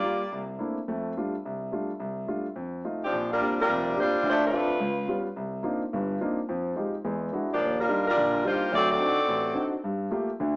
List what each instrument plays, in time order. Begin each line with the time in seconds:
Already playing: saxophone section A#3 F4 G4 D5
0.03 grand piano G3 A#3 F4
0.32 grand piano C2
0.59 grand piano A3 A#3 C4 D4 E4
0.88 grand piano F2 A3
1.17 grand piano G3 A3 D4 F4
1.45 grand piano C2
1.71 grand piano G3 A3 D4 F4
2.00 grand piano C2
2.27 grand piano G3 A3 D4 F4
2.56 grand piano F2
2.84 grand piano A3 D#4 F4
3.02 saxophone section F3 C4 D4 G4
3.13 grand piano A#1
3.31 saxophone section G3 D4 F4 A#4
3.40 grand piano A#3 C4 D4 G4
3.60 saxophone section G3 D4 F4 A#4
3.68 grand piano F1 F2
3.96 saxophone section G3 D4, grand piano A#3 C4 D4 G4
4.00 saxophone section F4 C5
4.23 grand piano D2 D3
4.27 saxophone section A3 D4 F4 C5
4.44 saxophone section A3 D4 F4 B4
4.52 grand piano C4 D4 F4
4.80 grand piano C#2
5.08 grand piano G3 B3 C#4 F4
5.36 grand piano C2
5.63 grand piano A#3 C4 D4 D#4 F4
5.93 grand piano G1 G2
6.21 grand piano A#3 C4 D4 D#4 F4
6.49 grand piano F2 F3
6.76 grand piano G#3 D#4 F4 G4
7.05 grand piano E2 G#3
7.33 grand piano G#3 D4 E4 F#4
7.51 saxophone section F3 A#3 D4 G4
7.60 grand piano D#2
7.79 saxophone section G3 D4 F4 A#4
7.88 grand piano G3 D4 D#4 F4
8.07 saxophone section G3 D4 F4 A#4
8.17 grand piano A#1 D3
8.44 grand piano G3 D4 D#4 F4, saxophone section A#3 F4 G4 C5
8.72 grand piano D2 F#3, saxophone section C4 F#4 A4 D5
8.91 saxophone section C4 F#4 A4 D5
9.00 grand piano C4 D4 D#4 F#4
9.28 grand piano A1
9.54 grand piano C4 D4 D#4 F#4
9.84 grand piano G2
10.11 grand piano A3 A#3 F4 G4
10.40 grand piano D2 D3